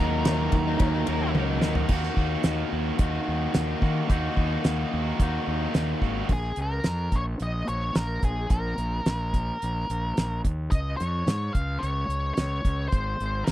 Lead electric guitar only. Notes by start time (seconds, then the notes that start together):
Already playing: A#4
6.33 G#4
6.62 A#4
7.16 C#5
7.43 D#5
7.69 C#5
7.96 A#4
8.25 G#4
8.51 A#4
10.71 D#5
10.97 C#5
11.53 F5
11.79 C#5
12.34 C#5
12.88 C5
13.44 A#4